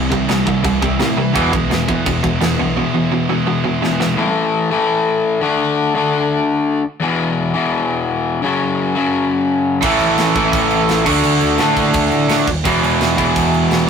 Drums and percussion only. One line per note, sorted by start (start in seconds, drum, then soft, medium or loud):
0.12 kick medium
0.29 snare loud
0.29 crash medium
0.47 kick medium
0.64 kick loud
0.64 crash medium
0.82 kick medium
1.00 snare loud
1.00 crash medium
1.35 kick loud
1.35 crash medium
1.53 kick loud
1.71 snare loud
1.71 crash medium
1.89 kick medium
2.06 kick loud
2.06 crash medium
2.24 kick medium
2.41 snare loud
2.41 crash medium
3.84 snare medium
4.01 snare medium
9.82 kick loud
9.82 crash medium
10.00 crash medium
10.18 snare loud
10.18 crash medium
10.35 kick medium
10.35 crash medium
10.53 kick loud
10.53 crash medium
10.71 crash medium
10.89 snare loud
10.89 crash medium
11.06 kick loud
11.06 crash loud
11.24 crash medium
11.41 crash medium
11.58 snare loud
11.58 crash medium
11.77 kick medium
11.77 crash medium
11.93 kick loud
11.93 crash loud
12.12 crash medium
12.29 snare loud
12.29 crash loud
12.48 kick medium
12.48 crash medium
12.65 kick loud
12.65 crash loud
12.84 crash medium
13.01 snare loud
13.01 crash medium
13.18 kick medium
13.18 crash medium
13.36 kick loud
13.36 crash medium
13.54 crash medium
13.71 snare loud
13.71 crash medium